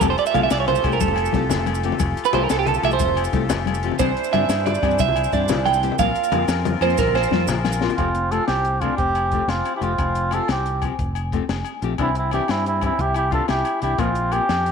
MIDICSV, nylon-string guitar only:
0, 0, Header, 1, 3, 480
1, 0, Start_track
1, 0, Key_signature, -1, "major"
1, 0, Tempo, 332594
1, 32, Time_signature, 12, 3, 24, 8
1, 21241, End_track
2, 0, Start_track
2, 0, Title_t, "Nylon-string guitar"
2, 0, Program_c, 0, 24
2, 0, Note_on_c, 0, 53, 73
2, 5, Note_on_c, 0, 57, 77
2, 9, Note_on_c, 0, 60, 69
2, 22, Note_on_c, 0, 67, 81
2, 157, Note_off_c, 0, 53, 0
2, 162, Note_off_c, 0, 57, 0
2, 164, Note_off_c, 0, 60, 0
2, 171, Note_off_c, 0, 67, 0
2, 481, Note_on_c, 0, 53, 61
2, 494, Note_on_c, 0, 57, 64
2, 501, Note_on_c, 0, 60, 62
2, 512, Note_on_c, 0, 67, 57
2, 640, Note_off_c, 0, 53, 0
2, 646, Note_off_c, 0, 57, 0
2, 650, Note_off_c, 0, 60, 0
2, 655, Note_off_c, 0, 67, 0
2, 1206, Note_on_c, 0, 53, 60
2, 1221, Note_on_c, 0, 57, 55
2, 1232, Note_on_c, 0, 60, 56
2, 1240, Note_on_c, 0, 67, 61
2, 1361, Note_off_c, 0, 53, 0
2, 1368, Note_off_c, 0, 57, 0
2, 1374, Note_off_c, 0, 60, 0
2, 1378, Note_off_c, 0, 67, 0
2, 1925, Note_on_c, 0, 53, 53
2, 1930, Note_on_c, 0, 57, 56
2, 1946, Note_on_c, 0, 60, 59
2, 1954, Note_on_c, 0, 67, 62
2, 2080, Note_off_c, 0, 53, 0
2, 2082, Note_off_c, 0, 57, 0
2, 2090, Note_off_c, 0, 60, 0
2, 2094, Note_off_c, 0, 67, 0
2, 2651, Note_on_c, 0, 53, 67
2, 2666, Note_on_c, 0, 57, 65
2, 2670, Note_on_c, 0, 60, 70
2, 2676, Note_on_c, 0, 67, 73
2, 2801, Note_off_c, 0, 53, 0
2, 2809, Note_off_c, 0, 57, 0
2, 2811, Note_off_c, 0, 60, 0
2, 2814, Note_off_c, 0, 67, 0
2, 3368, Note_on_c, 0, 53, 57
2, 3374, Note_on_c, 0, 57, 58
2, 3390, Note_on_c, 0, 60, 62
2, 3395, Note_on_c, 0, 67, 63
2, 3519, Note_off_c, 0, 53, 0
2, 3522, Note_off_c, 0, 57, 0
2, 3529, Note_off_c, 0, 60, 0
2, 3532, Note_off_c, 0, 67, 0
2, 4078, Note_on_c, 0, 53, 59
2, 4087, Note_on_c, 0, 57, 60
2, 4093, Note_on_c, 0, 60, 61
2, 4106, Note_on_c, 0, 67, 64
2, 4233, Note_off_c, 0, 53, 0
2, 4237, Note_off_c, 0, 57, 0
2, 4240, Note_off_c, 0, 60, 0
2, 4246, Note_off_c, 0, 67, 0
2, 4805, Note_on_c, 0, 53, 60
2, 4812, Note_on_c, 0, 57, 65
2, 4818, Note_on_c, 0, 60, 66
2, 4830, Note_on_c, 0, 67, 75
2, 4955, Note_off_c, 0, 53, 0
2, 4958, Note_off_c, 0, 57, 0
2, 4961, Note_off_c, 0, 60, 0
2, 4968, Note_off_c, 0, 67, 0
2, 5539, Note_on_c, 0, 53, 58
2, 5548, Note_on_c, 0, 57, 62
2, 5555, Note_on_c, 0, 60, 62
2, 5565, Note_on_c, 0, 67, 61
2, 5681, Note_off_c, 0, 53, 0
2, 5685, Note_off_c, 0, 57, 0
2, 5689, Note_off_c, 0, 60, 0
2, 5694, Note_off_c, 0, 67, 0
2, 5761, Note_on_c, 0, 52, 75
2, 5765, Note_on_c, 0, 60, 77
2, 5777, Note_on_c, 0, 62, 78
2, 5783, Note_on_c, 0, 67, 74
2, 5911, Note_off_c, 0, 52, 0
2, 5914, Note_off_c, 0, 60, 0
2, 5919, Note_off_c, 0, 62, 0
2, 5923, Note_off_c, 0, 67, 0
2, 6239, Note_on_c, 0, 52, 57
2, 6256, Note_on_c, 0, 60, 57
2, 6262, Note_on_c, 0, 62, 64
2, 6277, Note_on_c, 0, 67, 64
2, 6390, Note_off_c, 0, 52, 0
2, 6398, Note_off_c, 0, 60, 0
2, 6401, Note_off_c, 0, 62, 0
2, 6409, Note_off_c, 0, 67, 0
2, 6953, Note_on_c, 0, 52, 59
2, 6961, Note_on_c, 0, 60, 61
2, 6974, Note_on_c, 0, 62, 60
2, 6982, Note_on_c, 0, 67, 60
2, 7106, Note_off_c, 0, 52, 0
2, 7109, Note_off_c, 0, 60, 0
2, 7116, Note_off_c, 0, 62, 0
2, 7120, Note_off_c, 0, 67, 0
2, 7688, Note_on_c, 0, 52, 53
2, 7692, Note_on_c, 0, 60, 66
2, 7699, Note_on_c, 0, 62, 56
2, 7712, Note_on_c, 0, 67, 62
2, 7832, Note_off_c, 0, 52, 0
2, 7834, Note_off_c, 0, 60, 0
2, 7837, Note_off_c, 0, 62, 0
2, 7844, Note_off_c, 0, 67, 0
2, 8394, Note_on_c, 0, 52, 60
2, 8412, Note_on_c, 0, 60, 60
2, 8425, Note_on_c, 0, 67, 64
2, 8544, Note_off_c, 0, 52, 0
2, 8553, Note_off_c, 0, 60, 0
2, 8560, Note_off_c, 0, 67, 0
2, 8646, Note_on_c, 0, 53, 77
2, 8658, Note_on_c, 0, 58, 77
2, 8666, Note_on_c, 0, 60, 78
2, 8672, Note_on_c, 0, 65, 80
2, 8790, Note_off_c, 0, 53, 0
2, 8796, Note_off_c, 0, 58, 0
2, 8800, Note_off_c, 0, 60, 0
2, 8803, Note_off_c, 0, 65, 0
2, 9131, Note_on_c, 0, 53, 57
2, 9140, Note_on_c, 0, 58, 61
2, 9148, Note_on_c, 0, 60, 68
2, 9156, Note_on_c, 0, 65, 69
2, 9272, Note_off_c, 0, 53, 0
2, 9276, Note_off_c, 0, 58, 0
2, 9281, Note_off_c, 0, 60, 0
2, 9285, Note_off_c, 0, 65, 0
2, 9836, Note_on_c, 0, 53, 55
2, 9859, Note_on_c, 0, 58, 63
2, 9865, Note_on_c, 0, 60, 63
2, 9868, Note_on_c, 0, 65, 64
2, 9984, Note_off_c, 0, 53, 0
2, 9996, Note_off_c, 0, 58, 0
2, 9998, Note_off_c, 0, 60, 0
2, 10000, Note_off_c, 0, 65, 0
2, 10553, Note_on_c, 0, 53, 58
2, 10565, Note_on_c, 0, 58, 60
2, 10571, Note_on_c, 0, 60, 68
2, 10578, Note_on_c, 0, 65, 64
2, 10702, Note_off_c, 0, 53, 0
2, 10708, Note_off_c, 0, 58, 0
2, 10711, Note_off_c, 0, 60, 0
2, 10715, Note_off_c, 0, 65, 0
2, 11280, Note_on_c, 0, 53, 62
2, 11290, Note_on_c, 0, 58, 78
2, 11306, Note_on_c, 0, 60, 73
2, 11312, Note_on_c, 0, 65, 76
2, 11426, Note_off_c, 0, 53, 0
2, 11431, Note_off_c, 0, 58, 0
2, 11439, Note_off_c, 0, 60, 0
2, 11442, Note_off_c, 0, 65, 0
2, 11508, Note_on_c, 0, 53, 57
2, 11516, Note_on_c, 0, 60, 64
2, 11518, Note_on_c, 0, 57, 60
2, 11528, Note_on_c, 0, 67, 68
2, 11660, Note_off_c, 0, 53, 0
2, 11664, Note_off_c, 0, 60, 0
2, 11665, Note_off_c, 0, 57, 0
2, 11670, Note_off_c, 0, 67, 0
2, 11995, Note_on_c, 0, 53, 49
2, 12001, Note_on_c, 0, 57, 51
2, 12015, Note_on_c, 0, 60, 49
2, 12017, Note_on_c, 0, 67, 50
2, 12144, Note_off_c, 0, 53, 0
2, 12147, Note_off_c, 0, 57, 0
2, 12154, Note_off_c, 0, 60, 0
2, 12155, Note_off_c, 0, 67, 0
2, 12726, Note_on_c, 0, 53, 50
2, 12736, Note_on_c, 0, 57, 50
2, 12747, Note_on_c, 0, 60, 56
2, 12759, Note_on_c, 0, 67, 51
2, 12870, Note_off_c, 0, 53, 0
2, 12875, Note_off_c, 0, 57, 0
2, 12880, Note_off_c, 0, 60, 0
2, 12886, Note_off_c, 0, 67, 0
2, 13459, Note_on_c, 0, 53, 48
2, 13467, Note_on_c, 0, 57, 49
2, 13479, Note_on_c, 0, 60, 51
2, 13488, Note_on_c, 0, 67, 49
2, 13597, Note_off_c, 0, 53, 0
2, 13601, Note_off_c, 0, 57, 0
2, 13608, Note_off_c, 0, 60, 0
2, 13612, Note_off_c, 0, 67, 0
2, 14153, Note_on_c, 0, 53, 48
2, 14165, Note_on_c, 0, 57, 47
2, 14172, Note_on_c, 0, 60, 50
2, 14179, Note_on_c, 0, 67, 57
2, 14305, Note_off_c, 0, 53, 0
2, 14311, Note_off_c, 0, 57, 0
2, 14315, Note_off_c, 0, 60, 0
2, 14318, Note_off_c, 0, 67, 0
2, 14876, Note_on_c, 0, 53, 46
2, 14889, Note_on_c, 0, 57, 56
2, 14895, Note_on_c, 0, 60, 52
2, 14907, Note_on_c, 0, 67, 61
2, 15028, Note_off_c, 0, 53, 0
2, 15034, Note_off_c, 0, 57, 0
2, 15037, Note_off_c, 0, 60, 0
2, 15044, Note_off_c, 0, 67, 0
2, 15621, Note_on_c, 0, 53, 44
2, 15642, Note_on_c, 0, 60, 54
2, 15655, Note_on_c, 0, 67, 60
2, 15762, Note_off_c, 0, 53, 0
2, 15772, Note_off_c, 0, 60, 0
2, 15778, Note_off_c, 0, 67, 0
2, 16349, Note_on_c, 0, 53, 58
2, 16355, Note_on_c, 0, 57, 51
2, 16363, Note_on_c, 0, 60, 58
2, 16376, Note_on_c, 0, 67, 54
2, 16487, Note_off_c, 0, 53, 0
2, 16490, Note_off_c, 0, 57, 0
2, 16494, Note_off_c, 0, 60, 0
2, 16500, Note_off_c, 0, 67, 0
2, 17056, Note_on_c, 0, 53, 61
2, 17071, Note_on_c, 0, 57, 55
2, 17085, Note_on_c, 0, 60, 59
2, 17086, Note_on_c, 0, 67, 64
2, 17201, Note_off_c, 0, 53, 0
2, 17209, Note_off_c, 0, 57, 0
2, 17216, Note_off_c, 0, 60, 0
2, 17217, Note_off_c, 0, 67, 0
2, 17301, Note_on_c, 0, 52, 64
2, 17310, Note_on_c, 0, 60, 71
2, 17316, Note_on_c, 0, 62, 72
2, 17318, Note_on_c, 0, 67, 70
2, 17444, Note_off_c, 0, 52, 0
2, 17449, Note_off_c, 0, 60, 0
2, 17452, Note_off_c, 0, 62, 0
2, 17453, Note_off_c, 0, 67, 0
2, 17780, Note_on_c, 0, 52, 51
2, 17788, Note_on_c, 0, 60, 55
2, 17801, Note_on_c, 0, 62, 58
2, 17806, Note_on_c, 0, 67, 54
2, 17924, Note_off_c, 0, 52, 0
2, 17929, Note_off_c, 0, 60, 0
2, 17935, Note_off_c, 0, 62, 0
2, 17938, Note_off_c, 0, 67, 0
2, 18491, Note_on_c, 0, 52, 49
2, 18511, Note_on_c, 0, 60, 52
2, 18516, Note_on_c, 0, 62, 52
2, 18524, Note_on_c, 0, 67, 49
2, 18641, Note_off_c, 0, 52, 0
2, 18651, Note_off_c, 0, 60, 0
2, 18654, Note_off_c, 0, 62, 0
2, 18658, Note_off_c, 0, 67, 0
2, 19210, Note_on_c, 0, 52, 49
2, 19222, Note_on_c, 0, 60, 53
2, 19231, Note_on_c, 0, 62, 52
2, 19238, Note_on_c, 0, 67, 50
2, 19362, Note_off_c, 0, 52, 0
2, 19368, Note_off_c, 0, 60, 0
2, 19372, Note_off_c, 0, 62, 0
2, 19376, Note_off_c, 0, 67, 0
2, 19937, Note_on_c, 0, 52, 48
2, 19957, Note_on_c, 0, 62, 55
2, 19961, Note_on_c, 0, 67, 56
2, 20086, Note_off_c, 0, 52, 0
2, 20097, Note_off_c, 0, 62, 0
2, 20098, Note_off_c, 0, 67, 0
2, 20178, Note_on_c, 0, 53, 64
2, 20180, Note_on_c, 0, 58, 73
2, 20187, Note_on_c, 0, 60, 66
2, 20192, Note_on_c, 0, 65, 70
2, 20327, Note_off_c, 0, 53, 0
2, 20328, Note_off_c, 0, 58, 0
2, 20331, Note_off_c, 0, 60, 0
2, 20334, Note_off_c, 0, 65, 0
2, 20654, Note_on_c, 0, 53, 50
2, 20661, Note_on_c, 0, 58, 54
2, 20671, Note_on_c, 0, 60, 57
2, 20679, Note_on_c, 0, 65, 55
2, 20806, Note_off_c, 0, 53, 0
2, 20810, Note_off_c, 0, 58, 0
2, 20814, Note_off_c, 0, 60, 0
2, 20818, Note_off_c, 0, 65, 0
2, 21241, End_track
3, 0, Start_track
3, 0, Title_t, "Muted nylon-string guitar strokes"
3, 8427, Note_on_c, 9, 29, 69
3, 8571, Note_off_c, 9, 29, 0
3, 19947, Note_on_c, 9, 29, 51
3, 20091, Note_off_c, 9, 29, 0
3, 21241, End_track
0, 0, End_of_file